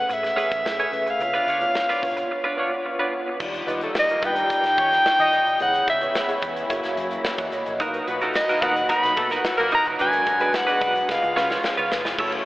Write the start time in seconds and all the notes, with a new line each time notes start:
Already playing: A3 C#4 G#4 B4 F#5
0.09 A2 E5, muted clean electric guitar stroke, closed hi-hat, shaker
0.23 muted clean electric guitar stroke, snare, closed hi-hat, shaker
0.36 A3 C#4 G#4 B4, closed hi-hat, shaker
0.51 A1, muted clean electric guitar stroke, kick, closed hi-hat, shaker
0.65 B1, muted clean electric guitar stroke, snare, shaker
0.78 A3 C#4 G#4 B4 C#5, closed hi-hat, shaker
0.92 B1, muted clean electric guitar stroke, closed hi-hat
1.07 F5, muted clean electric guitar stroke, closed hi-hat, shaker
1.19 C#2 B3 D4 F4 C#5, muted clean electric guitar stroke, closed hi-hat, shaker
1.34 D4 F4 B4, closed hi-hat, shaker
1.46 C#2 D4 F4 C#5, closed hi-hat
1.61 B3 D4 F4 C#5, muted clean electric guitar stroke, closed hi-hat, shaker
1.74 muted clean electric guitar stroke, snare, shaker
1.89 D4 F4 B4, snare, closed hi-hat, shaker
2.03 B1 B3 D4 F4 C#5, muted clean electric guitar stroke, kick, open hi-hat, shaker
2.17 muted clean electric guitar stroke, closed hi-hat, shaker
2.31 muted clean electric guitar stroke
2.44 D4 F4 B4
2.57 B3 D4 F4 C#5
2.72 muted clean electric guitar stroke
2.86 muted clean electric guitar stroke
2.98 B3 D4 F4 B4 C#5
3.14 muted clean electric guitar stroke
3.28 muted clean electric guitar stroke
3.38 D#2 D#3 F3 G3 A#3 D#4 F4 D5, kick, crash, shaker
3.54 closed hi-hat, shaker
3.66 D#2 G3 B3 D#4 F4 B4 D5, closed hi-hat, shaker
3.81 A3 A4, closed hi-hat, shaker
3.95 snare, shaker
3.99 D#5
4.08 A#3 A#4, closed hi-hat, shaker
4.22 G2 G3 B3 D#4 F4 B4 D5 G5, kick, closed hi-hat, shaker
4.36 closed hi-hat, shaker
4.50 kick, closed hi-hat, shaker
4.63 D#2, snare, closed hi-hat, shaker
4.77 D#3 C#4 C#5, kick, closed hi-hat
4.92 snare, closed hi-hat, shaker
5.05 snare, shaker
5.19 D#2 D#4 D#5, closed hi-hat, shaker
5.33 A1, closed hi-hat, shaker
5.46 A#1, closed hi-hat, shaker
5.60 C#2 C#3 E3 G#3 B3 E4 G#4 C#5 F#5, closed hi-hat, shaker
5.74 closed hi-hat, shaker
5.87 C#2 E5, kick, closed hi-hat, shaker
6.01 B3 E4 G#4 C#5, closed hi-hat, shaker
6.14 snare, shaker
6.28 B3 E4 G#4 C#5, closed hi-hat, shaker
6.42 E2, kick, closed hi-hat, shaker
6.56 closed hi-hat, shaker
6.69 F#1 F#3 A#3 E4 F#4 C#5, kick, closed hi-hat, shaker
6.83 F#1, snare, closed hi-hat, shaker
6.97 F#2, closed hi-hat
7.11 closed hi-hat, shaker
7.25 snare, shaker
7.38 E2 D#5 F#5, kick, closed hi-hat, shaker
7.52 G#1 D#5, closed hi-hat, shaker
7.66 A#1 A#4 C#5, closed hi-hat, shaker
7.80 B1 D#3 F#3 A#3 D#4 F#4 A#4 B4, kick, closed hi-hat, shaker
7.94 closed hi-hat, shaker
8.07 B1 A#2 B3 D#4 F#4 B4, muted clean electric guitar stroke, closed hi-hat, shaker
8.21 A3 D#4 F#4 A4 A#4, closed hi-hat, shaker
8.33 D#5, muted clean electric guitar stroke, snare, shaker
8.48 A#3 D#4 F#4 A#4, snare, closed hi-hat, shaker
8.62 D#2 A#2 B3 D#4 F#4 A#4 B4 F#5, kick, closed hi-hat, shaker
8.76 muted clean electric guitar stroke, closed hi-hat, shaker
8.89 D#4 F#4 A#4 B5, kick, closed hi-hat, shaker
9.03 B1, muted clean electric guitar stroke, snare, closed hi-hat, shaker
9.17 B2 A3 A4, muted clean electric guitar stroke, kick, closed hi-hat
9.30 D#4 F#4 A#4, snare, closed hi-hat, shaker
9.44 muted clean electric guitar stroke, snare, shaker
9.57 B1 A#3 A#4, muted clean electric guitar stroke, closed hi-hat, shaker
9.71 E1 D#4 F#4 A#4 A#5, closed hi-hat, shaker
9.85 F#1 D#4 F#4 A#4, closed hi-hat, shaker
9.99 G#1 D3 G#3 B3 D4 F#4 B4 G#5, closed hi-hat, shaker
10.13 closed hi-hat, shaker
10.26 G#1, muted clean electric guitar stroke, kick, closed hi-hat, shaker
10.40 G#3 D4 F#4 B4, closed hi-hat, shaker
10.53 F#5, muted clean electric guitar stroke, snare, shaker
10.67 G#3 D4 F#4 B4, closed hi-hat, shaker
10.81 B1 D4 F#4 B4, kick, closed hi-hat, shaker
10.94 muted clean electric guitar stroke, closed hi-hat, shaker
11.08 C#2 C#3 F3 G#3 C#4 F4 B4 F5, muted clean electric guitar stroke, kick, snare, shaker
11.23 C#2, muted clean electric guitar stroke, shaker
11.36 C#3 C#4 F4 B4, snare
11.50 C#4 F4 C#5, snare, shaker
11.63 muted clean electric guitar stroke, snare, shaker
11.77 C#2 C#4 F4 B4, shaker
11.91 F#1, muted clean electric guitar stroke, snare, shaker
12.05 F1, muted clean electric guitar stroke, snare, shaker
12.17 F#1 C#3 E3 F#3 A3 C#4 E4 F#4 A4 C#5, kick, crash
12.32 muted clean electric guitar stroke, ride